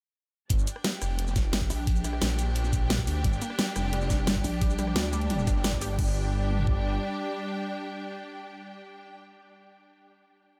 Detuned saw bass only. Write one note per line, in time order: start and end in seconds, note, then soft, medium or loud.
0.50 0.66 G1 loud
1.02 1.52 F1 medium
1.53 1.69 G1 loud
2.22 3.06 A#1 loud
3.07 3.23 D2 loud
3.24 3.40 G1 loud
3.76 4.26 F1 loud
4.27 4.43 G1 medium
5.47 5.97 G1 loud
5.99 6.98 G1 loud